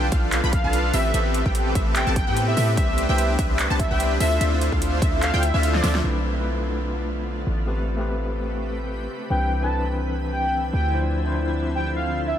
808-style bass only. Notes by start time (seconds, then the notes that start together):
Already playing: B1
0.12 B1
0.44 B1
0.64 B1
0.94 A1
1.14 A1
1.46 A1
1.75 A1
2.07 A1
2.27 A2
2.57 A2
2.77 C2
3.09 C2
3.39 C2
3.70 C2
3.91 C2
4.20 D2
4.41 D2
4.72 D2
5.02 D2
5.34 D2
5.54 D2
5.84 D2
6.04 B1
7.47 A1
9.30 C2
10.73 D2